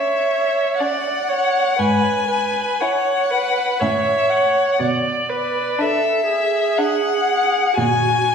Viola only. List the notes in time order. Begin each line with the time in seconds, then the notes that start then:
Already playing: C#5
0.80 D5
1.29 C#5
1.79 B4
2.28 B4
2.80 C#5
3.31 B4
3.80 C#5
4.81 D5
5.30 B4
5.82 A4
6.31 G#4
7.79 F#4